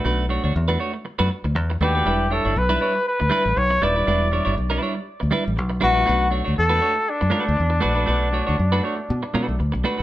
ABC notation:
X:1
M:4/4
L:1/16
Q:"Swing 16ths" 1/4=120
K:Edor
V:1 name="Flugelhorn"
z12 z2 G2- | G2 A2 B4 B4 c2 d2- | d4 z8 z2 F2- | F2 z2 A4 D8- |
D12 z4 |]
V:2 name="Clean electric guitar"
[A,DFB]2 [A,DFc] [A,DFc] z [A,DFB] [A,DFc] z2 [A,DFB]2 z3 [A,DFB] [A,DFB] | [G,DEB]2 [G,DEc] [G,DEc] z [G,DEB] [G,DEc] z3 [G,DEB]2 z2 [G,DEB] [G,DEB] | [G,DEB]2 [G,DEc] [G,DEc] z [G,DEB] [G,DEc] z3 [G,DEB]2 z2 [G,DEB] [G,DEB] | [A,DFB]2 [A,DFc] [A,DFc] z [A,DFB] [A,DFc] z3 [A,DFB]2 z2 [A,DFB] [A,DFB] |
[A,DFB]2 [A,DFc] [A,DFc] z [A,DFB] [A,DFc] z3 [A,DFB]2 z2 [A,DFB] [A,DFB] |]
V:3 name="Fingered electric bass" clef=bass
B,,,3 D,, E,,2 z3 F,, z D,, E,,2 ^D,,2 | E,,,3 G,,, B,,,2 z3 D,, z A,,, B,,,2 ^D,,,2 | E,,,3 G,,, B,,,2 z3 D,, z A,,, B,,,2 ^A,,,2 | B,,,3 D,, E,,2 z3 F,, z D,, E,,2 ^A,,,2 |
B,,,3 D,, F,,2 z2 B,, z B,, B,,, D,, B,,, z2 |]